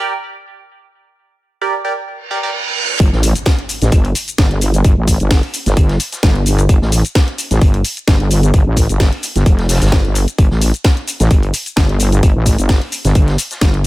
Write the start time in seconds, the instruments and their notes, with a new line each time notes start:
0.00 synth stab G4 A#4 D5
1.61 synth stab G4 A#4 D5
1.85 synth stab G4 A#4 D5
2.08 reverse cymbal
2.31 synth stab G4 A#4 D5
2.43 synth stab G4 A#4 D5
3.00 wobble bass G1, kick, closed hi-hat, impact, shaker
3.12 wobble bass A1, snare
3.23 closed hi-hat, open hi-hat, shaker
3.36 closed hi-hat, shaker
3.45 kick, snare, closed hi-hat, shaker
3.59 closed hi-hat
3.69 closed hi-hat, open hi-hat, shaker
3.82 wobble bass A1, snare, closed hi-hat, shaker
3.92 wobble bass G1, kick, closed hi-hat, shaker
4.05 closed hi-hat
4.15 closed hi-hat, open hi-hat, shaker
4.28 closed hi-hat, shaker
4.38 wobble bass G1, kick, snare, closed hi-hat, shaker
4.51 closed hi-hat
4.61 closed hi-hat, open hi-hat, shaker
4.74 closed hi-hat, shaker
4.84 wobble bass G1, kick, closed hi-hat, shaker
4.97 wobble bass A1
5.08 kick, closed hi-hat, open hi-hat, shaker
5.20 wobble bass G1, closed hi-hat, shaker
5.30 kick, snare, closed hi-hat, open hi-hat, shaker
5.43 closed hi-hat
5.54 closed hi-hat, open hi-hat, shaker
5.66 wobble bass G1, snare, closed hi-hat, shaker
5.77 wobble bass G1, kick, closed hi-hat, shaker
5.89 snare, closed hi-hat
6.00 closed hi-hat, open hi-hat, shaker
6.12 snare, closed hi-hat, shaker
6.23 wobble bass G1, kick, snare, closed hi-hat, shaker
6.36 closed hi-hat
6.46 closed hi-hat, open hi-hat, shaker
6.59 closed hi-hat, shaker
6.69 wobble bass G1, kick, closed hi-hat, shaker
6.82 wobble bass A1, snare
6.92 closed hi-hat, open hi-hat, shaker
7.05 closed hi-hat, shaker
7.15 kick, snare, closed hi-hat, shaker
7.28 closed hi-hat
7.38 closed hi-hat, open hi-hat, shaker
7.51 wobble bass A1, snare, closed hi-hat, shaker
7.61 wobble bass G1, kick, closed hi-hat, shaker
7.74 closed hi-hat
7.84 closed hi-hat, open hi-hat, shaker
7.97 closed hi-hat, shaker
8.07 wobble bass G1, kick, snare, closed hi-hat, shaker
8.20 closed hi-hat
8.31 closed hi-hat, open hi-hat, shaker
8.43 closed hi-hat, shaker
8.53 wobble bass G1, kick, closed hi-hat, shaker
8.66 wobble bass A1
8.76 kick, closed hi-hat, open hi-hat, shaker
8.89 wobble bass G1, closed hi-hat, shaker
9.00 kick, snare, closed hi-hat, open hi-hat, shaker
9.13 closed hi-hat
9.23 closed hi-hat, open hi-hat, shaker
9.35 wobble bass G1, snare, closed hi-hat, shaker
9.46 wobble bass F1, kick, closed hi-hat, shaker
9.59 snare, closed hi-hat
9.69 snare, closed hi-hat, open hi-hat, shaker
9.75 snare, closed hi-hat
9.81 wobble bass G1, snare, closed hi-hat, shaker
9.86 snare, closed hi-hat
9.92 kick, snare, closed hi-hat, shaker
10.05 closed hi-hat
10.15 closed hi-hat, open hi-hat, shaker
10.28 closed hi-hat, shaker
10.38 wobble bass G1, kick, closed hi-hat, shaker
10.51 wobble bass A1, snare
10.61 closed hi-hat, open hi-hat, shaker
10.74 closed hi-hat, shaker
10.84 kick, snare, closed hi-hat, shaker
10.97 closed hi-hat
11.07 closed hi-hat, open hi-hat, shaker
11.20 wobble bass A1, snare, closed hi-hat, shaker
11.31 wobble bass G1, kick, closed hi-hat, shaker
11.43 closed hi-hat
11.54 closed hi-hat, open hi-hat, shaker
11.66 closed hi-hat, shaker
11.76 wobble bass G1, kick, snare, closed hi-hat, shaker
11.89 closed hi-hat
12.00 closed hi-hat, open hi-hat, shaker
12.12 closed hi-hat, shaker
12.23 wobble bass G1, kick, closed hi-hat, shaker
12.35 wobble bass A1
12.46 kick, closed hi-hat, open hi-hat, shaker
12.59 wobble bass G1, closed hi-hat, shaker
12.68 kick, snare, closed hi-hat, open hi-hat, shaker
12.82 closed hi-hat
12.92 closed hi-hat, open hi-hat, shaker
13.05 wobble bass G1, snare, closed hi-hat, shaker
13.15 wobble bass G1, kick, closed hi-hat, shaker
13.28 snare, closed hi-hat
13.38 closed hi-hat, open hi-hat, shaker
13.51 snare, closed hi-hat, shaker
13.61 wobble bass G1, kick, snare, closed hi-hat, shaker
13.74 closed hi-hat